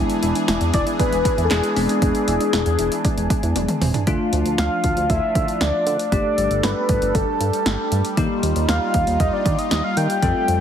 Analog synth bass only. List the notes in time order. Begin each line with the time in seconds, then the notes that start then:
0.23 E1
0.48 E1
0.61 E2
0.74 E1
1.12 E1
1.38 E2
1.51 E1
1.76 E1
2.02 E1
2.28 E1
2.53 E1
2.66 E2
2.79 E1
3.17 E1
3.43 E2
3.56 E1
3.82 E1
4.07 D2
4.33 D2
4.46 D2
4.58 D2
4.84 D2
4.97 D2
5.10 D2
5.35 D3
5.61 D2
5.87 D3
6.12 G1
6.38 G1
6.51 G1
6.63 G1
6.89 G1
7.02 G1
7.15 G1
7.40 G2
7.66 G1
7.92 G2
8.17 D#2
8.43 D#2
8.56 D#2
8.69 D#2
8.94 D#2
9.07 D#2
9.20 D#2
9.46 D#3
9.71 D#2
9.97 D#3
10.22 F2
10.48 F2